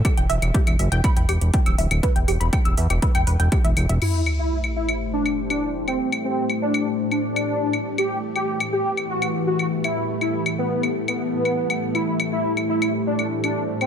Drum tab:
CC |----------------|----------------|x---------------|----------------|
HH |xxoxxxoxxxoxxxox|xxoxxxoxxxoxxxox|----------------|----------------|
CL |x--x-x--x-x--x-x|--x-x--x-x--x-x-|x-x--x-x--x-x--x|-x--x-x--x-x--x-|
BD |o---o---o---o---|o---o---o---o---|----------------|----------------|

CC |----------------|----------------|----------------|
HH |----------------|----------------|----------------|
CL |x--x-x--x-x--x-x|--x-x--x-x--x-x-|x-x--x-x--x-x--x|
BD |----------------|----------------|----------------|